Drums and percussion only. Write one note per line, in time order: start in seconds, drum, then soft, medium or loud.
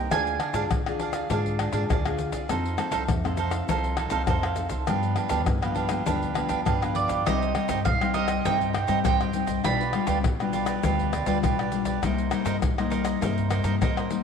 0.11 pandeiro medium
0.11 tamborim medium
0.11 shaker medium
0.11 surdo medium
0.27 pandeiro soft
0.27 shaker soft
0.40 pandeiro medium
0.40 tamborim medium
0.54 pandeiro medium
0.54 shaker medium
0.54 surdo soft
0.71 pandeiro medium
0.71 tamborim medium
0.71 shaker medium
0.71 surdo medium
0.86 pandeiro soft
0.86 tamborim medium
0.86 shaker soft
0.99 pandeiro medium
0.99 surdo soft
1.13 pandeiro medium
1.13 tamborim medium
1.13 shaker medium
1.30 pandeiro medium
1.30 shaker medium
1.30 surdo medium
1.46 pandeiro soft
1.46 shaker soft
1.46 surdo soft
1.59 pandeiro medium
1.59 tamborim medium
1.59 surdo soft
1.73 pandeiro medium
1.73 shaker medium
1.90 pandeiro medium
1.90 tamborim medium
1.90 shaker medium
1.90 surdo medium
2.06 pandeiro soft
2.06 tamborim medium
2.06 shaker soft
2.18 pandeiro medium
2.18 shaker medium
2.32 pandeiro medium
2.32 shaker medium
2.32 surdo soft
2.49 pandeiro medium
2.49 tamborim medium
2.49 shaker medium
2.49 surdo medium
2.66 pandeiro soft
2.66 shaker soft
2.78 pandeiro medium
2.78 tamborim medium
2.78 shaker medium
2.92 pandeiro medium
2.92 shaker medium
2.92 surdo soft
3.08 pandeiro medium
3.08 tamborim medium
3.08 shaker medium
3.08 surdo loud
3.25 pandeiro soft
3.25 tamborim medium
3.25 shaker soft
3.37 pandeiro medium
3.37 shaker medium
3.51 pandeiro medium
3.51 tamborim medium
3.51 shaker medium
3.69 pandeiro medium
3.69 shaker loud
3.69 surdo medium
3.84 pandeiro soft
3.84 shaker soft
3.84 surdo soft
3.97 pandeiro medium
3.97 tamborim medium
3.97 surdo soft
4.10 pandeiro medium
4.10 shaker medium
4.27 pandeiro medium
4.27 tamborim medium
4.27 shaker medium
4.27 surdo medium
4.43 pandeiro soft
4.43 tamborim medium
4.43 shaker soft
4.56 pandeiro medium
4.56 shaker medium
4.69 pandeiro medium
4.69 shaker medium
4.69 surdo soft
4.87 pandeiro medium
4.87 tamborim medium
4.87 shaker medium
4.87 surdo medium
5.03 pandeiro soft
5.03 shaker soft
5.16 pandeiro medium
5.16 tamborim medium
5.29 pandeiro medium
5.29 shaker medium
5.29 surdo soft
5.46 pandeiro medium
5.46 tamborim medium
5.46 shaker medium
5.46 surdo loud
5.62 pandeiro soft
5.62 tamborim medium
5.62 shaker soft
5.76 pandeiro medium
5.76 surdo soft
5.89 pandeiro medium
5.89 tamborim medium
5.89 shaker medium
6.06 pandeiro medium
6.06 shaker medium
6.06 surdo medium
6.22 pandeiro soft
6.22 shaker soft
6.22 surdo soft
6.35 pandeiro medium
6.35 tamborim medium
6.35 surdo soft
6.49 pandeiro medium
6.49 shaker medium
6.66 pandeiro medium
6.66 tamborim medium
6.66 shaker medium
6.66 surdo medium
6.82 pandeiro soft
6.82 tamborim medium
6.82 shaker soft
6.95 pandeiro medium
7.09 pandeiro medium
7.09 shaker medium
7.09 surdo soft
7.27 pandeiro medium
7.27 tamborim medium
7.27 shaker medium
7.27 surdo medium
7.42 pandeiro soft
7.42 shaker soft
7.55 pandeiro medium
7.55 tamborim medium
7.69 pandeiro medium
7.69 shaker medium
7.69 surdo soft
7.85 pandeiro medium
7.85 tamborim medium
7.85 shaker medium
7.85 surdo medium
8.01 pandeiro soft
8.01 tamborim medium
8.01 shaker soft
8.14 pandeiro medium
8.14 shaker medium
8.28 pandeiro medium
8.28 tamborim medium
8.28 shaker medium
8.45 pandeiro medium
8.45 shaker medium
8.45 surdo medium
8.61 pandeiro soft
8.61 shaker soft
8.61 surdo soft
8.74 pandeiro medium
8.74 tamborim medium
8.74 surdo soft
8.88 pandeiro medium
8.88 shaker medium
9.05 pandeiro medium
9.05 tamborim medium
9.05 shaker medium
9.05 surdo loud
9.21 pandeiro soft
9.21 tamborim medium
9.21 shaker soft
9.33 pandeiro medium
9.33 shaker medium
9.47 pandeiro medium
9.47 shaker medium
9.47 surdo soft
9.64 pandeiro medium
9.64 tamborim medium
9.64 shaker medium
9.64 surdo medium
9.81 pandeiro soft
9.81 shaker soft
9.93 pandeiro medium
9.93 tamborim medium
10.07 pandeiro medium
10.07 shaker medium
10.07 surdo soft
10.24 pandeiro medium
10.24 tamborim medium
10.24 shaker medium
10.24 surdo loud
10.40 pandeiro soft
10.40 tamborim medium
10.40 shaker soft
10.53 pandeiro medium
10.53 shaker medium
10.66 pandeiro medium
10.66 tamborim medium
10.66 shaker medium
10.83 pandeiro medium
10.83 shaker medium
10.83 surdo medium
10.99 pandeiro soft
10.99 shaker soft
10.99 surdo soft
11.13 pandeiro medium
11.13 tamborim medium
11.13 shaker medium
11.13 surdo soft
11.26 pandeiro medium
11.26 shaker medium
11.44 pandeiro medium
11.44 tamborim medium
11.44 shaker medium
11.44 surdo loud
11.59 pandeiro soft
11.59 tamborim medium
11.59 shaker soft
11.72 pandeiro medium
11.72 shaker medium
11.85 pandeiro medium
11.85 shaker medium
11.85 surdo soft
12.03 pandeiro medium
12.03 tamborim medium
12.03 shaker medium
12.03 surdo medium
12.18 pandeiro soft
12.18 shaker soft
12.31 pandeiro medium
12.31 tamborim medium
12.31 shaker medium
12.46 pandeiro medium
12.46 shaker loud
12.46 surdo soft
12.62 pandeiro medium
12.62 tamborim medium
12.62 shaker medium
12.62 surdo loud
12.78 pandeiro soft
12.78 tamborim medium
12.78 shaker soft
12.91 pandeiro medium
12.91 shaker medium
13.05 pandeiro medium
13.05 tamborim medium
13.05 shaker medium
13.22 pandeiro medium
13.22 shaker medium
13.22 surdo medium
13.38 pandeiro soft
13.38 shaker soft
13.38 surdo soft
13.50 pandeiro medium
13.50 tamborim medium
13.50 shaker medium
13.50 surdo soft
13.64 pandeiro medium
13.64 shaker medium
13.82 pandeiro medium
13.82 tamborim medium
13.82 shaker medium
13.82 surdo loud
13.97 pandeiro soft
13.97 tamborim medium
13.97 shaker soft
14.10 pandeiro medium
14.10 shaker medium